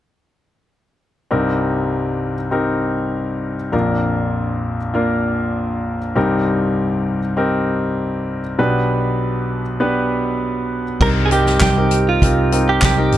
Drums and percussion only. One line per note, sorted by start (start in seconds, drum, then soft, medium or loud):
11.01 kick loud
11.01 crash medium
11.31 closed hi-hat medium
11.46 snare soft
11.60 kick medium
11.60 snare medium
11.60 clap medium
11.60 closed hi-hat medium
11.91 closed hi-hat medium
12.22 kick medium
12.22 closed hi-hat medium
12.52 closed hi-hat medium
12.82 kick medium
12.82 snare loud
12.82 clap medium
12.82 closed hi-hat medium
13.12 closed hi-hat medium